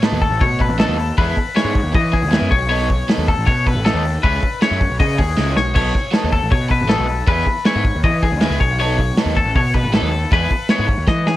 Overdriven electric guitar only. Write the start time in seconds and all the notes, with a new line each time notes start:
0.02 F#3 B3 D#4 A4
0.22 muted overdriven electric guitar stroke
0.41 muted overdriven electric guitar stroke
0.59 muted overdriven electric guitar stroke
0.78 F#3 B3 D#4 A4
0.98 muted overdriven electric guitar stroke
1.17 G#3 B3 E4 G#4
1.37 muted overdriven electric guitar stroke
1.55 G#3 B3 E4 G#4
1.73 muted overdriven electric guitar stroke
1.92 muted overdriven electric guitar stroke
2.12 muted overdriven electric guitar stroke
2.31 G#3 B3 E4 G#4
2.50 muted overdriven electric guitar stroke
2.69 F#3 B3 D#4 A4
2.89 muted overdriven electric guitar stroke
3.08 F#3 B3 D#4 A4
3.28 muted overdriven electric guitar stroke
3.46 muted overdriven electric guitar stroke
3.67 muted overdriven electric guitar stroke
3.85 F#3 B3 D#4 A4
4.04 muted overdriven electric guitar stroke
4.23 G#3 C#4 E4 G#4
4.43 muted overdriven electric guitar stroke
4.61 G#3 C#4 E4 G#4
4.81 muted overdriven electric guitar stroke
5.00 muted overdriven electric guitar stroke
5.19 muted overdriven electric guitar stroke
5.37 G#3 C#4 E4 G#4
5.56 muted overdriven electric guitar stroke
5.74 F#3 B3 D#4 A4
5.94 muted overdriven electric guitar stroke
6.12 F#3 B3 D#4 A4
6.31 muted overdriven electric guitar stroke
6.51 muted overdriven electric guitar stroke
6.69 muted overdriven electric guitar stroke
6.88 F#3 B3 D#4 A4
7.08 muted overdriven electric guitar stroke
7.27 G#3 B3 E4 G#4
7.47 muted overdriven electric guitar stroke
7.65 G#3 B3 E4 G#4
7.84 muted overdriven electric guitar stroke
8.04 muted overdriven electric guitar stroke
8.22 muted overdriven electric guitar stroke
8.41 G#3 B3 E4 G#4
8.60 muted overdriven electric guitar stroke
8.79 F#3 B3 D#4 A4
8.99 muted overdriven electric guitar stroke
9.18 F#3 B3 D#4 A4
9.37 muted overdriven electric guitar stroke
9.56 muted overdriven electric guitar stroke
9.75 muted overdriven electric guitar stroke
9.93 F#3 B3 D#4 A4
10.12 muted overdriven electric guitar stroke
10.32 G#3 B3 E4 G#4
10.51 muted overdriven electric guitar stroke
10.70 G#3 B3 E4 G#4
10.88 muted overdriven electric guitar stroke
11.07 muted overdriven electric guitar stroke
11.28 muted overdriven electric guitar stroke